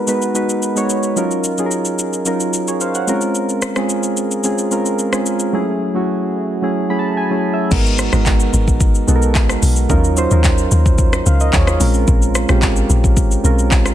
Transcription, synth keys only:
Already playing: G#3 B3 D#4 F#4 A#4 B4
0.07 G#3 B3 D#4 F#4 B4
0.34 G#3 B3 D#4 F#4 B4
0.75 G#3 B3 D#4 F#4 C#5
1.16 F#3 C#4 D#4 F4 A#4
1.58 F#3 C#4 D#4 F4 G#4
1.66 A#4
2.25 F#3 C#4 D#4 F4 A#4
2.68 G#4 C#5
2.81 C5 F5
2.95 C#5 F#5
3.07 G#3 C4 C#4 F4 A#4
3.76 G#3 C4 C#4 F4 G#4
4.44 G#3 C4 C#4 F4 G#4
4.71 G#3 C4 C#4 F4 A#4
5.12 G#3 C4 C#4 F4 G#4
5.53 F#3 A3 C#4 E4 G#4
5.94 F#3 A3 C#4 E4 F#4
6.62 F#3 A3 C#4 E4 G#4
6.89 F#3 A3 C#4 E4 G#4 B5
6.99 A5
7.17 G#5
7.30 F#3 A3 C#4 E4 G#4
7.54 E5
7.71 G#3 B3 D#4 F#4 A#4
8.12 G#3 B3 D#4 F#4 A#4
9.07 G#3 B3 D#4 F#4 A4
9.16 A#4
9.89 F#3 C#4 D#4 F4 A#4
10.16 F#3 C#4 D#4 F4 C5
10.30 F#3 C#4 D#4 F4 A#4
11.26 C5 F5
11.41 A#4 D#5
11.54 G#4 C#5
11.68 F4 A#4
11.80 G#3 C4 C#4 F4 A#4
12.49 G#3 C4 C#4 F4 G4
13.44 G#3 C4 C#4 F4 A#4

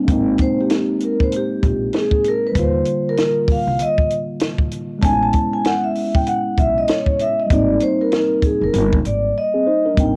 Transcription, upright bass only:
0.08 G#1
1.63 A#1
2.55 D#2
3.67 C2
5.03 A1
6.57 B1
7.50 G#1
8.61 F1
8.74 G1
9.05 G#1
9.97 G#1

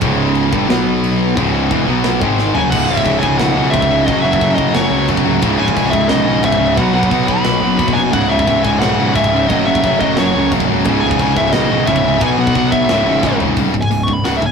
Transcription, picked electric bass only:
0.02 C#1
0.53 G1
0.70 B1
1.37 C#1
1.71 E1
1.87 B1
2.21 G#1
2.55 F#1
2.72 C#1
2.89 C#1
3.06 C#1
3.23 C#1
3.39 B1
3.56 B1
3.74 C#1
4.08 F#1
4.23 F#1
4.41 F#1
4.75 F#1
4.91 C#2
5.09 C#1
5.24 C#1
5.43 C#1
5.59 C#1
5.77 C#1
5.94 C#1
6.10 B1
6.26 B1
6.44 C#1
6.77 B1
6.95 B1
7.12 B1
7.45 B1
7.61 F#1
7.79 F#1
7.95 F#1
8.14 C#1
8.30 C#1
8.48 C#1
8.64 C#1
8.82 B1
8.99 B1
9.15 C#1
9.50 F#1
9.68 F#1
9.84 F#1
10.18 F#1
10.36 C#2
10.52 C#1
10.70 C#1
10.86 C#1
11.03 C#1
11.20 C#1
11.37 C#1
11.53 B1
11.70 B1
11.87 C#1
12.21 B1
12.38 B1
12.56 B1
12.89 C#1
13.06 G#1
13.23 G#1
13.41 G#1
13.58 C#1
13.74 C#1
13.90 C#1
14.24 C#1
14.42 C#1

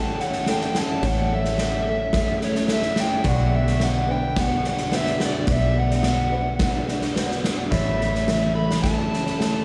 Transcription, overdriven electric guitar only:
Already playing: A5
0.21 F#5
0.50 G5
0.79 A5
1.07 F#5
1.35 E5
2.44 C#5
2.73 E5
3.01 G5
3.28 F#5
3.56 E5
3.85 F#5
4.11 G5
4.40 F#5
4.69 F#5
4.97 E5
5.25 D5
5.52 E5
5.80 F#5
7.71 E5
8.56 B5
8.83 A5

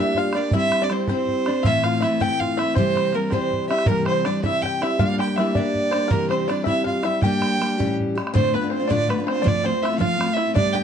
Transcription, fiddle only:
Already playing: E5
0.18 F5
0.37 D5
0.55 E5
0.84 D5
0.92 C5
1.11 C5
1.63 E5 F5
1.84 F5
2.04 E5
2.22 G5
2.39 F5
2.59 E5
2.77 C5
3.15 A#4
3.32 C5
3.69 E5
3.87 A#4
4.07 C5
4.26 D5
4.44 E5
4.62 G5
4.82 E5
5.01 F5
5.20 G5
5.36 E5
5.56 D5
6.11 A#4
6.30 C5
6.48 D5
6.67 E5
6.86 F5
7.06 E5
7.23 G5
8.35 C5
8.54 B4
8.74 C5
8.91 D5
9.10 B4
9.30 C5
9.48 D5
9.66 C5
9.82 E5
9.98 F5
10.34 E5
10.55 D5
10.73 G5

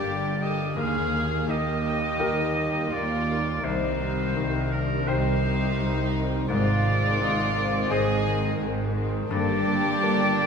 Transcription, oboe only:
Already playing: D5
0.42 D#5
0.78 F5
1.50 D#5
2.92 D5
3.64 C5
4.72 A#4
5.07 C5
6.49 D5
7.90 D#5
9.30 D5

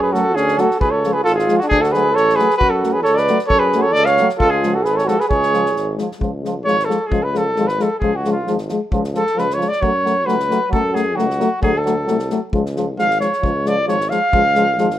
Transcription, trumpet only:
0.02 B4
0.13 A4
0.35 G#4
0.58 A4
0.80 B4
0.91 C#5
1.13 B4
1.24 A4
1.35 G#4
1.58 F#4
1.68 G#4
1.81 A4
1.92 B4
2.15 C#5
2.36 B4
2.57 B4
2.70 A4
2.92 B4
3.03 C#5
3.15 D5
3.47 C#5
3.59 B4
3.81 C#5
3.92 D5
4.05 F5
4.38 A4
4.50 G#4
4.75 A4
4.85 B4
4.97 C#5
5.08 A4
5.20 B4
5.30 C#5
6.64 C#5
6.84 A4
7.07 G#4
7.23 B4
7.37 A4
7.67 B4
7.82 A4
7.99 G#4
8.16 F#4
8.32 F4
9.16 A4
9.39 B4
9.54 C#5
9.68 D5
9.81 C#5
10.26 B4
10.71 A4
10.94 G#4
11.16 F#4
11.62 G#4
11.78 A4
12.99 F5
13.20 C#5
13.68 D5
13.88 C#5
14.09 F5

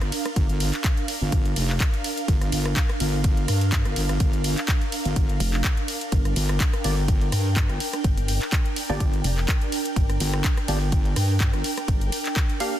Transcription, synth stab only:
6.84 A#3 D4 G4 D5
8.89 A#3 D4 G4 D5
10.68 A#3 D4 G4 D5
12.60 A#3 D4 G4 F5

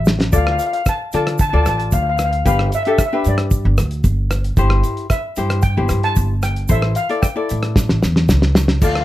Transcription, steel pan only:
0.36 F5
0.45 F5
0.51 F5
0.59 F5
0.66 F5
0.73 F5
0.89 A5
1.15 A5
1.41 A5
1.49 A5
1.56 A5
1.63 A5
1.69 A5
1.77 A5
1.93 F5
2.03 F5
2.09 F5
2.17 F5
2.24 F5
2.31 F5
2.47 F5
2.75 E5
2.83 E5
2.91 E5
2.98 E5
3.06 E5
3.14 E5
3.28 D5
5.11 E5
5.63 G5
6.04 A5
6.43 G5
6.71 E5
6.96 F5
7.22 G5
8.85 F5
8.93 F5
9.00 F5

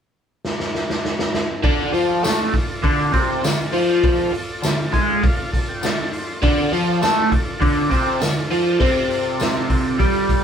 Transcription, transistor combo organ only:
1.65 F4 A4 D5
4.95 E5
5.09 F5
5.22 F5
5.52 A5
5.69 G5
5.84 A5
6.13 C6
6.43 F4 A4 D5

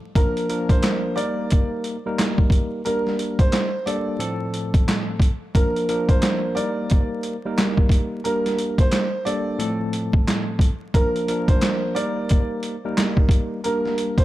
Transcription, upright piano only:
0.15 A#4
0.70 C5
1.16 D5
2.85 A#4
3.40 C5
3.86 D5
5.55 A#4
6.10 C5
6.55 D5
8.24 A#4
8.80 C5
9.25 D5
10.94 A#4
11.49 C5
11.95 D5
13.64 A#4
14.19 C5

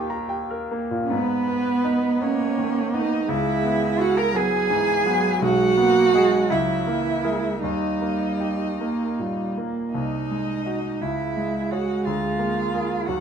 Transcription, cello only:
1.04 C#4
1.12 B3
2.24 C#4
2.95 D#4
3.29 E4
3.99 F#4
4.18 A#4
4.36 G#4
5.41 F#4
6.50 E4
7.61 D#4
9.93 D#4
11.01 E4
11.71 F#4
12.05 F4
13.07 F#4

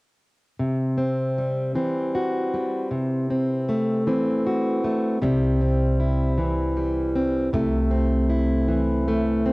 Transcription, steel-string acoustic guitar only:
0.59 C3
0.98 C4
1.38 G3
1.75 E3 C4
2.15 F#4
2.54 G3
2.91 C3
3.30 C4
3.69 A3
4.07 E3 C4
4.47 F#4
4.84 A3
5.22 C3 G3
5.61 C4
6.00 E4
6.38 E3
6.77 G3
7.15 C4
7.53 C3 A3
7.91 C4
8.30 E4
8.68 E3
9.08 A3
9.46 C4

